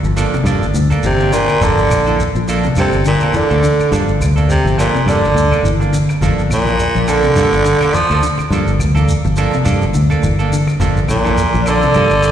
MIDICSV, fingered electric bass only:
0, 0, Header, 1, 3, 480
1, 0, Start_track
1, 0, Tempo, 574163
1, 1354, Time_signature, 4, 2, 24, 8
1, 10296, End_track
2, 0, Start_track
2, 0, Title_t, "Fingered electric bass"
2, 0, Program_c, 0, 33
2, 25, Note_on_c, 0, 31, 86
2, 215, Note_off_c, 0, 31, 0
2, 366, Note_on_c, 0, 43, 102
2, 503, Note_on_c, 0, 31, 80
2, 515, Note_off_c, 0, 43, 0
2, 592, Note_off_c, 0, 31, 0
2, 620, Note_on_c, 0, 38, 95
2, 726, Note_off_c, 0, 38, 0
2, 863, Note_on_c, 0, 31, 90
2, 1233, Note_off_c, 0, 31, 0
2, 1346, Note_on_c, 0, 31, 88
2, 1451, Note_off_c, 0, 31, 0
2, 1473, Note_on_c, 0, 31, 81
2, 1560, Note_off_c, 0, 31, 0
2, 1586, Note_on_c, 0, 34, 96
2, 1874, Note_off_c, 0, 34, 0
2, 1965, Note_on_c, 0, 34, 86
2, 2231, Note_off_c, 0, 34, 0
2, 2316, Note_on_c, 0, 43, 93
2, 2419, Note_off_c, 0, 43, 0
2, 2446, Note_on_c, 0, 31, 85
2, 2631, Note_off_c, 0, 31, 0
2, 2933, Note_on_c, 0, 38, 82
2, 3014, Note_off_c, 0, 38, 0
2, 3273, Note_on_c, 0, 43, 102
2, 3378, Note_off_c, 0, 43, 0
2, 3409, Note_on_c, 0, 31, 76
2, 3513, Note_on_c, 0, 38, 84
2, 3525, Note_off_c, 0, 31, 0
2, 3800, Note_off_c, 0, 38, 0
2, 3882, Note_on_c, 0, 31, 86
2, 4070, Note_off_c, 0, 31, 0
2, 4231, Note_on_c, 0, 43, 91
2, 4359, Note_on_c, 0, 31, 75
2, 4372, Note_off_c, 0, 43, 0
2, 4446, Note_off_c, 0, 31, 0
2, 4469, Note_on_c, 0, 38, 91
2, 4575, Note_off_c, 0, 38, 0
2, 4706, Note_on_c, 0, 31, 86
2, 5077, Note_off_c, 0, 31, 0
2, 5190, Note_on_c, 0, 31, 88
2, 5296, Note_off_c, 0, 31, 0
2, 5313, Note_on_c, 0, 31, 76
2, 5402, Note_off_c, 0, 31, 0
2, 5429, Note_on_c, 0, 34, 86
2, 5717, Note_off_c, 0, 34, 0
2, 5812, Note_on_c, 0, 34, 87
2, 6076, Note_off_c, 0, 34, 0
2, 6152, Note_on_c, 0, 43, 86
2, 6257, Note_off_c, 0, 43, 0
2, 6282, Note_on_c, 0, 31, 75
2, 6469, Note_off_c, 0, 31, 0
2, 6769, Note_on_c, 0, 38, 85
2, 6852, Note_off_c, 0, 38, 0
2, 7110, Note_on_c, 0, 43, 100
2, 7214, Note_off_c, 0, 43, 0
2, 7246, Note_on_c, 0, 31, 80
2, 7348, Note_on_c, 0, 38, 84
2, 7361, Note_off_c, 0, 31, 0
2, 7635, Note_off_c, 0, 38, 0
2, 7729, Note_on_c, 0, 31, 88
2, 7912, Note_off_c, 0, 31, 0
2, 8076, Note_on_c, 0, 43, 96
2, 8211, Note_on_c, 0, 31, 81
2, 8223, Note_off_c, 0, 43, 0
2, 8291, Note_off_c, 0, 31, 0
2, 8325, Note_on_c, 0, 38, 94
2, 8422, Note_off_c, 0, 38, 0
2, 8556, Note_on_c, 0, 31, 95
2, 8919, Note_off_c, 0, 31, 0
2, 9026, Note_on_c, 0, 31, 93
2, 9130, Note_off_c, 0, 31, 0
2, 9163, Note_on_c, 0, 31, 82
2, 9245, Note_off_c, 0, 31, 0
2, 9261, Note_on_c, 0, 34, 92
2, 9549, Note_off_c, 0, 34, 0
2, 9648, Note_on_c, 0, 34, 90
2, 9910, Note_off_c, 0, 34, 0
2, 9993, Note_on_c, 0, 43, 92
2, 10093, Note_off_c, 0, 43, 0
2, 10123, Note_on_c, 0, 31, 83
2, 10296, Note_off_c, 0, 31, 0
2, 10296, End_track
3, 0, Start_track
3, 0, Title_t, "Muted fingered electric bass strokes"
3, 3176, Note_on_c, 9, 29, 34
3, 3259, Note_off_c, 9, 29, 0
3, 7008, Note_on_c, 9, 29, 37
3, 7092, Note_off_c, 9, 29, 0
3, 10296, End_track
0, 0, End_of_file